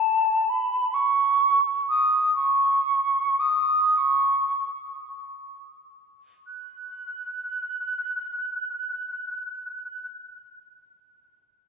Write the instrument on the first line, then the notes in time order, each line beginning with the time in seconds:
flute
Already playing: A5
0.49 B5
0.94 C#6
1.89 D#6
2.36 C#6
3.40 D#6
3.98 C#6
6.47 F#6